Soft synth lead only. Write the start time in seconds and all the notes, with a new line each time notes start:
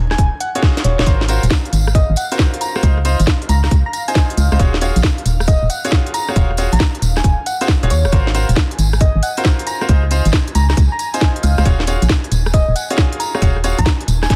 0.11 G#5
0.18 G#5
0.40 F#5
0.55 F#5
0.84 C#5
1.95 D#5
2.17 F#5
2.32 F#5
2.61 A#5
3.49 A#5
3.64 A#5
3.86 A#5
3.93 A#5
4.08 G#5
4.15 G#5
4.37 F5
4.52 F5
5.48 D#5
5.70 F#5
5.85 F#5
6.14 A#5
6.73 A#5
7.17 G#5
7.24 G#5
7.46 F#5
7.61 F#5
7.91 C#5
9.01 D#5
9.23 F#5
9.37 F#5
9.67 A#5
10.55 A#5
10.70 A#5
10.92 A#5
10.99 A#5
11.14 G#5
11.21 G#5
11.43 F5
11.58 F5
12.54 D#5
12.76 F#5
12.90 F#5
13.20 A#5
13.79 A#5
14.23 G#5
14.30 G#5